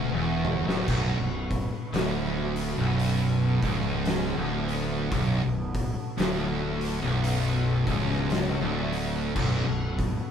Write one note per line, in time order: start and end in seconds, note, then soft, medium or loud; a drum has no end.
0.00 0.10 D1 medium
0.00 0.11 D2 loud
0.00 10.31 B3 medium
0.00 10.31 F#4 medium
0.00 0.85 B4 medium
0.14 0.63 E1 loud
0.14 0.65 E2 loud
0.45 mid tom loud
0.66 0.86 D1 loud
0.66 0.87 D2 medium
0.66 snare loud
0.88 1.17 B0 medium
0.88 1.18 B1 loud
0.88 10.31 A4 medium
0.88 kick loud
0.88 crash loud
0.88 splash medium
1.19 1.68 B0 medium
1.19 1.64 B1 medium
1.51 kick loud
1.51 open hi-hat medium
1.93 2.74 D1 medium
1.93 2.77 D2 loud
1.93 snare loud
1.93 open hi-hat medium
2.56 open hi-hat medium
2.77 3.58 B0 loud
2.77 3.61 B1 medium
2.99 open hi-hat medium
3.62 4.33 C#1 medium
3.62 4.35 C#2 loud
3.62 kick medium
3.62 open hi-hat medium
4.05 snare loud
4.05 open hi-hat medium
4.37 5.08 D1 medium
4.37 5.10 D2 loud
4.68 open hi-hat medium
5.12 5.41 B0 medium
5.12 5.41 B1 loud
5.12 kick loud
5.12 open hi-hat medium
5.43 5.93 B0 medium
5.43 5.87 B1 medium
5.74 kick loud
5.74 open hi-hat medium
6.17 6.99 D1 loud
6.17 7.01 D2 loud
6.17 snare loud
6.17 open hi-hat medium
6.81 open hi-hat medium
7.02 7.83 B0 loud
7.02 7.85 B1 medium
7.24 open hi-hat medium
7.85 8.57 C#1 medium
7.85 8.59 C#2 loud
7.85 kick medium
7.85 open hi-hat medium
8.11 snare soft
8.30 snare loud
8.30 open hi-hat medium
8.61 9.32 D1 loud
8.61 9.34 D2 loud
8.93 open hi-hat medium
9.36 9.65 B0 loud
9.36 9.65 B1 loud
9.36 kick loud
9.36 crash loud
9.67 10.17 B0 medium
9.67 10.11 B1 medium
9.99 kick loud
9.99 open hi-hat medium